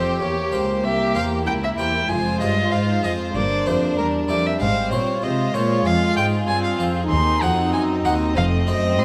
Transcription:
Already playing: harpsichord F2 A#3 C4 G4, cello section F2, viola section C4, violin section G4 C5, violin C5
0.20 harpsichord E2, cello section E2, viola section A#3, violin section G4, violin C#5
0.52 harpsichord C#2 A#3 C4 G4, cello section C#2, violin C5
0.84 harpsichord C2, cello section C2, violin section G4, violin E5
1.15 harpsichord E2 A#3 C4 G4, cello section E2, violin F5
1.46 harpsichord C#2, cello section C#2, violin section E4 A#4, violin G5
1.64 violin E5
1.78 harpsichord E2 A#3 C4 G4, cello section E2, violin G5
2.09 double bass section F1, harpsichord F2, cello section F2, viola section G#3, violin section F4 C5, violin G#5
2.40 harpsichord G2 C4 F4 G#4, cello section G2, violin D#5
2.72 harpsichord G#2, cello section G#2, violin section C5, violin F5
3.03 harpsichord F2 C4 F4 G#4, cello section F2, violin D#5
3.35 double bass section G1, harpsichord G2, cello section G2, viola section A#3, violin section D4, violin D5
3.66 harpsichord F2 A#3 E4 G4, cello section F2, violin C5
3.98 harpsichord E2, cello section E2, viola section G3, violin A#4, violin section A#4
4.28 harpsichord F2 A#3 E4 G4, cello section F2, violin D5
4.46 violin E5
4.60 double bass section G#1, harpsichord G#2 G#3, cello section G#2, violin section C4 C5, violin F5
4.91 harpsichord A#2 C4 F4 C5, cello section A#2, violin C#5
5.22 harpsichord C3, cello section C3, viola section G#3, violin section F4 C5, violin D#5
5.54 harpsichord A#2 C4 F4 C5, cello section A#2, violin C#5
5.85 harpsichord F2 G#3, cello section F2, violin section G#4, violin F5
6.17 harpsichord G#2 C4 F4 C5, cello section G#2, violin G5
6.47 harpsichord G2, cello section G2, viola section C4, violin G#5
6.64 violin F5
6.79 harpsichord F2 C4 F4 C5, cello section F2
7.10 double bass section D#2, cello section D#2, harpsichord D#2, viola section C4, violin section D#4, violin C6
7.42 harpsichord F2 A#3 F#4 C5, cello section F2, violin F#5
7.73 harpsichord F#2, cello section F#2, violin section D#5, violin G#5
8.05 harpsichord D#2 A#3 F#4 C5, cello section D#2, violin F#5
8.36 double bass section F1, harpsichord F2, cello section F2, viola section A3, violin section C4, violin F5
8.67 harpsichord F#2 A3 D#4 C5, cello section F#2, violin D#5
8.98 harpsichord A2, cello section A2, viola section A3, violin C6

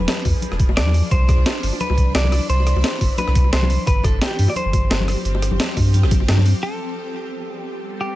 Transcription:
Already playing: ambient pad F3 D4 G#4, clean electric guitar B4
0.08 snare, closed hi-hat, high bongo
0.25 sub bass E2, kick, open hi-hat, high bongo
0.42 closed hi-hat, high conga
0.51 sub bass E1, cross-stick, high bongo
0.60 kick, closed hi-hat
0.69 high bongo
0.77 sub bass E2, clean electric guitar D5, snare, closed hi-hat
0.86 high conga
0.93 open hi-hat, high bongo
1.11 sub bass C2, ambient pad E3 B5, clean electric guitar C5, kick, closed hi-hat
1.28 kick, cross-stick, closed hi-hat, high bongo
1.38 sub bass C2
1.46 snare, closed hi-hat, high bongo
1.63 sub bass G1, open hi-hat
1.73 high bongo
1.80 clean electric guitar B4, closed hi-hat, high conga
1.90 sub bass C2, high bongo
1.98 kick, closed hi-hat
2.15 sub bass C2, clean electric guitar D5, snare, closed hi-hat, high bongo
2.25 high conga
2.32 cross-stick, open hi-hat, high bongo
2.49 sub bass C2, clean electric guitar C5, closed hi-hat
2.60 high bongo
2.67 cross-stick, closed hi-hat
2.76 sub bass C2, high bongo
2.84 snare, closed hi-hat
3.01 sub bass G1, kick, open hi-hat, high bongo
3.18 clean electric guitar B4, closed hi-hat, high bongo, high conga
3.28 sub bass C2, cross-stick
3.35 kick, closed hi-hat
3.44 high bongo
3.53 sub bass C2, clean electric guitar C5, snare, closed hi-hat
3.62 high bongo, high conga
3.70 open hi-hat
3.87 sub bass G1, ambient pad F3 C4 G4, clean electric guitar B4, kick, closed hi-hat, high bongo
4.04 clean electric guitar A4, kick, cross-stick, closed hi-hat, high bongo
4.14 sub bass G1
4.22 clean electric guitar G4, snare, closed hi-hat
4.31 high bongo
4.39 sub bass G2, open hi-hat
4.48 clean electric guitar D5, high bongo
4.56 clean electric guitar C5, closed hi-hat, high conga
4.65 sub bass G1
4.73 kick, closed hi-hat, high bongo
4.90 sub bass G1, snare, closed hi-hat, high bongo
5.00 high conga
5.08 cross-stick, open hi-hat
5.16 high bongo
5.25 sub bass G1, closed hi-hat
5.35 high bongo
5.42 cross-stick, closed hi-hat
5.51 sub bass G1, high conga
5.60 snare, closed hi-hat, high bongo
5.77 sub bass G2, kick, open hi-hat, high bongo
5.94 closed hi-hat, high conga
6.03 sub bass G1, cross-stick, high bongo
6.11 kick, closed hi-hat, high conga
6.20 high bongo
6.28 sub bass G2, snare, closed hi-hat
6.38 snare, high conga
6.46 open hi-hat, high bongo
6.63 ambient pad G3 B3 C4 A4, clean electric guitar A4
7.59 clean electric guitar G4
8.01 clean electric guitar G4

